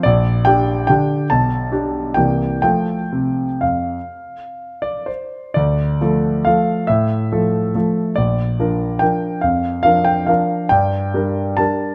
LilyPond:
<<
  \new Staff \with { instrumentName = "Grand piano" } { \time 3/4 \key f \major \tempo 4 = 139 d''4 g''4 g''4 | a''2 g''4 | g''2 f''4~ | f''4. d''8 c''4 |
\key d \minor d''2 f''4 | e''2. | d''2 g''4 | f''4 f''8 g''8 f''4 |
g''2 a''4 | }
  \new Staff \with { instrumentName = "Grand piano" } { \time 3/4 \key f \major bes,,4 <d' g'>4 <d d' g'>4 | b,,4 <d' g'>4 <c, e bes g'>4 | <f a a'>4 c4 f,4 | r2. |
\key d \minor d,4 <f a a'>4 <f a a'>4 | a,4 <f a a'>4 <f a a'>4 | bes,,4 <f d' bes'>4 <f d' bes'>4 | f,4 <f d' bes'>4 <f d' bes'>4 |
g,4 <g d' bes'>4 <g d' bes'>4 | }
>>